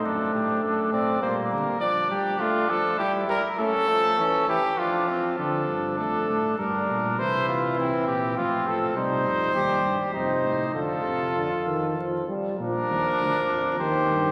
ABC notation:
X:1
M:3/4
L:1/8
Q:1/4=100
K:Dphr
V:1 name="Trumpet"
A G A d c B | d G F A G B | A3 G F2 | A2 A2 B2 |
c F =E G F A | [K:Bb] c4 c2 | A4- A z | B4 c2 |]
V:2 name="Flugelhorn"
D3 C B,2 | D4 =E2 | ^C A, C =E D =C | D4 D2 |
=E2 C2 C2 | [K:Bb] E2 G2 E2 | F4- F z | D4 G2 |]
V:3 name="Trombone" clef=bass
A,4 G,2 | F, G, A, F, G, G, | A, F, =E, E, F,2 | F,2 A,2 G,2 |
=E,4 F,2 | [K:Bb] G,2 G,2 C,2 | D, C, D, E, F, G, | F,4 E,2 |]
V:4 name="Tuba" clef=bass
^F,, A,, F,, A,, B,, D, | z6 | z6 | D, G,, F,, A,, G,, B,, |
C,2 C, B,, A,,2 | [K:Bb] C, F,, E,, G,, F,, A,, | F,,4- F,, z | B,, E,, D,, F,, E,, G,, |]